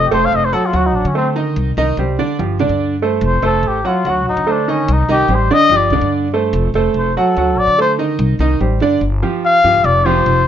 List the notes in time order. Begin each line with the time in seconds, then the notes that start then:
Already playing: F1
0.06 G4
0.11 F1 A3 A4 C5
0.25 F5
0.32 F1 D#5
0.45 C5
0.53 F#3 F#4 A4 F#5
0.66 F4
0.73 D2 F#3 F#4 F#5
0.86 D#4
0.94 A1 D4
1.05 D3 C#4
1.15 A3 C4 A4 C5
1.35 D#3 D#4 D#5
1.56 C2
1.77 C2 D#3 D#4 D#5
1.97 C2 G3 G4 C5
2.19 D3 D4 D5
2.39 G1 F3 F4 G4
2.59 D2 D3 D4 D5
2.69 G2
3.02 A3 A4 C5
3.21 F1
3.27 C5
3.42 F1 A3 A4 C5
3.46 A4
3.63 A1
3.68 G4
3.85 F#3 F4 F#4 F#5
4.05 D2 F#3 F#4 F#5
4.10 F#4
4.26 A1 D#4
4.37 D3
4.47 A3 A4 C5
4.51 D4
4.68 D#3 C#4 D#4 D#5
4.88 C2
4.93 D#4
5.09 C2 D#3 D#4 G4 D#5
5.28 A1 G3 G4 C5
5.35 C5
5.51 D3 D4 D5 D#5
5.70 G1 F3 F4 G4
5.76 D5
5.90 D2 D3 D4 D5
6.01 G2
6.34 A3 A4 C5
6.53 F1
6.74 F1 A3 A4 C5
6.94 F1
6.99 C5
7.17 F#3 F#4 A4 F#5
7.37 D2 F#3 F#4 F#5
7.57 A1 D5
7.68 D3
7.78 A3 A4 C5
7.99 D#3 D#4 D#5
8.19 C2
8.39 C2 D#3 D#4 D#5
8.61 A1 G3 G4 C5
8.80 G1 D3 D4 D5
9.01 G1
9.23 F3 F4 G4
9.45 F5
9.64 G2 F3 F4 G4
9.74 G1
9.84 F1 D5
10.06 F3 F4 G4 C5
10.26 F1